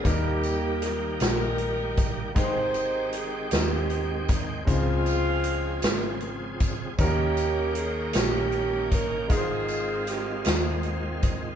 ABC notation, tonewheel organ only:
X:1
M:6/8
L:1/8
Q:3/8=52
K:Ab
V:1 name="Tonewheel organ"
[E,G,B,G]6 | [E,A,Cg]6 | [D,F,CA]6 | [E,B,D_G=g]6 |
[E,A,CF]6 |]